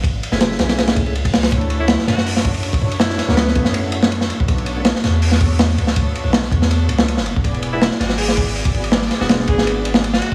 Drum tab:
RD |x-x-x-xxxxxxxxxx|xxx-x-x---xxxxxx|x-x-x-x-x-x-x-x-|xxx-x-x---x-x-x-|
HH |----------------|--------o-------|----------------|--------o-------|
SD |---ooooooo----oo|----oooo-o------|oooooo-o---o-o--|----ooo--o--o--o|
BD |o---------o--o--|o---------o--o--|------o--------o|o---------o-----|

RD |x-x-x-x-x-x-x-x-|xxx-x-x---xxxxxx|x-x-x-x-x-x-x-x-|
HH |----------------|--------o-------|----------------|
SD |----oo-o---o-o--|----oooo-o------|oooooo-o---o-o--|
BD |o-----o--------o|o---------o--o--|------o---------|